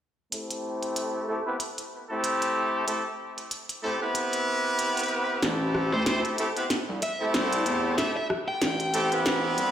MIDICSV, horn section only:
0, 0, Header, 1, 2, 480
1, 0, Start_track
1, 0, Key_signature, 0, "minor"
1, 0, Tempo, 638298
1, 245, Time_signature, 4, 2, 24, 8
1, 7304, End_track
2, 0, Start_track
2, 0, Title_t, "Horn section"
2, 0, Program_c, 0, 61
2, 247, Note_on_c, 0, 57, 79
2, 247, Note_on_c, 0, 60, 80
2, 247, Note_on_c, 0, 64, 74
2, 247, Note_on_c, 0, 67, 71
2, 247, Note_on_c, 0, 69, 86
2, 941, Note_off_c, 0, 60, 0
2, 941, Note_off_c, 0, 64, 0
2, 942, Note_off_c, 0, 57, 0
2, 942, Note_off_c, 0, 67, 0
2, 942, Note_off_c, 0, 69, 0
2, 964, Note_on_c, 0, 57, 88
2, 964, Note_on_c, 0, 60, 85
2, 964, Note_on_c, 0, 64, 79
2, 964, Note_on_c, 0, 69, 96
2, 965, Note_on_c, 0, 67, 80
2, 1044, Note_off_c, 0, 57, 0
2, 1044, Note_off_c, 0, 60, 0
2, 1044, Note_off_c, 0, 64, 0
2, 1044, Note_off_c, 0, 69, 0
2, 1045, Note_off_c, 0, 67, 0
2, 1101, Note_on_c, 0, 60, 85
2, 1101, Note_on_c, 0, 64, 79
2, 1101, Note_on_c, 0, 67, 82
2, 1102, Note_on_c, 0, 59, 88
2, 1102, Note_on_c, 0, 71, 95
2, 1161, Note_off_c, 0, 67, 0
2, 1162, Note_off_c, 0, 59, 0
2, 1162, Note_off_c, 0, 60, 0
2, 1162, Note_off_c, 0, 64, 0
2, 1162, Note_off_c, 0, 71, 0
2, 1581, Note_on_c, 0, 57, 97
2, 1581, Note_on_c, 0, 60, 96
2, 1581, Note_on_c, 0, 67, 86
2, 1581, Note_on_c, 0, 69, 105
2, 1582, Note_on_c, 0, 64, 87
2, 2140, Note_off_c, 0, 57, 0
2, 2140, Note_off_c, 0, 60, 0
2, 2140, Note_off_c, 0, 64, 0
2, 2140, Note_off_c, 0, 67, 0
2, 2140, Note_off_c, 0, 69, 0
2, 2162, Note_on_c, 0, 67, 69
2, 2163, Note_on_c, 0, 57, 76
2, 2163, Note_on_c, 0, 60, 74
2, 2163, Note_on_c, 0, 64, 68
2, 2163, Note_on_c, 0, 69, 82
2, 2291, Note_off_c, 0, 67, 0
2, 2292, Note_off_c, 0, 57, 0
2, 2292, Note_off_c, 0, 60, 0
2, 2292, Note_off_c, 0, 64, 0
2, 2292, Note_off_c, 0, 69, 0
2, 2882, Note_on_c, 0, 57, 97
2, 2882, Note_on_c, 0, 67, 85
2, 2882, Note_on_c, 0, 69, 105
2, 2883, Note_on_c, 0, 64, 87
2, 2884, Note_on_c, 0, 60, 96
2, 2988, Note_off_c, 0, 57, 0
2, 2988, Note_off_c, 0, 64, 0
2, 2988, Note_off_c, 0, 67, 0
2, 2988, Note_off_c, 0, 69, 0
2, 2989, Note_off_c, 0, 60, 0
2, 3021, Note_on_c, 0, 59, 101
2, 3021, Note_on_c, 0, 64, 90
2, 3021, Note_on_c, 0, 71, 109
2, 3022, Note_on_c, 0, 60, 96
2, 3023, Note_on_c, 0, 67, 91
2, 4060, Note_off_c, 0, 59, 0
2, 4060, Note_off_c, 0, 60, 0
2, 4060, Note_off_c, 0, 64, 0
2, 4060, Note_off_c, 0, 71, 0
2, 4061, Note_off_c, 0, 67, 0
2, 4084, Note_on_c, 0, 57, 81
2, 4084, Note_on_c, 0, 60, 83
2, 4084, Note_on_c, 0, 67, 73
2, 4084, Note_on_c, 0, 69, 88
2, 4085, Note_on_c, 0, 64, 77
2, 4780, Note_off_c, 0, 57, 0
2, 4780, Note_off_c, 0, 60, 0
2, 4780, Note_off_c, 0, 64, 0
2, 4780, Note_off_c, 0, 67, 0
2, 4780, Note_off_c, 0, 69, 0
2, 4802, Note_on_c, 0, 64, 84
2, 4803, Note_on_c, 0, 57, 91
2, 4803, Note_on_c, 0, 60, 89
2, 4803, Note_on_c, 0, 67, 83
2, 4803, Note_on_c, 0, 69, 99
2, 4884, Note_off_c, 0, 57, 0
2, 4884, Note_off_c, 0, 60, 0
2, 4884, Note_off_c, 0, 64, 0
2, 4884, Note_off_c, 0, 67, 0
2, 4884, Note_off_c, 0, 69, 0
2, 4938, Note_on_c, 0, 64, 83
2, 4939, Note_on_c, 0, 60, 91
2, 4939, Note_on_c, 0, 67, 81
2, 4940, Note_on_c, 0, 59, 90
2, 4940, Note_on_c, 0, 71, 98
2, 5000, Note_off_c, 0, 64, 0
2, 5000, Note_off_c, 0, 67, 0
2, 5001, Note_off_c, 0, 59, 0
2, 5001, Note_off_c, 0, 60, 0
2, 5001, Note_off_c, 0, 71, 0
2, 5420, Note_on_c, 0, 60, 100
2, 5420, Note_on_c, 0, 67, 89
2, 5421, Note_on_c, 0, 64, 91
2, 5422, Note_on_c, 0, 57, 98
2, 5422, Note_on_c, 0, 69, 107
2, 5979, Note_off_c, 0, 67, 0
2, 5980, Note_off_c, 0, 57, 0
2, 5980, Note_off_c, 0, 60, 0
2, 5980, Note_off_c, 0, 64, 0
2, 5980, Note_off_c, 0, 69, 0
2, 6001, Note_on_c, 0, 67, 69
2, 6002, Note_on_c, 0, 57, 77
2, 6002, Note_on_c, 0, 60, 77
2, 6002, Note_on_c, 0, 64, 70
2, 6002, Note_on_c, 0, 69, 84
2, 6131, Note_off_c, 0, 57, 0
2, 6131, Note_off_c, 0, 60, 0
2, 6131, Note_off_c, 0, 64, 0
2, 6131, Note_off_c, 0, 67, 0
2, 6131, Note_off_c, 0, 69, 0
2, 6721, Note_on_c, 0, 64, 87
2, 6722, Note_on_c, 0, 57, 99
2, 6722, Note_on_c, 0, 60, 101
2, 6722, Note_on_c, 0, 69, 108
2, 6723, Note_on_c, 0, 67, 89
2, 6828, Note_off_c, 0, 57, 0
2, 6828, Note_off_c, 0, 60, 0
2, 6828, Note_off_c, 0, 64, 0
2, 6828, Note_off_c, 0, 67, 0
2, 6828, Note_off_c, 0, 69, 0
2, 6857, Note_on_c, 0, 59, 103
2, 6857, Note_on_c, 0, 71, 112
2, 6858, Note_on_c, 0, 60, 99
2, 6859, Note_on_c, 0, 67, 89
2, 6860, Note_on_c, 0, 64, 94
2, 7304, Note_off_c, 0, 59, 0
2, 7304, Note_off_c, 0, 60, 0
2, 7304, Note_off_c, 0, 64, 0
2, 7304, Note_off_c, 0, 67, 0
2, 7304, Note_off_c, 0, 71, 0
2, 7304, End_track
0, 0, End_of_file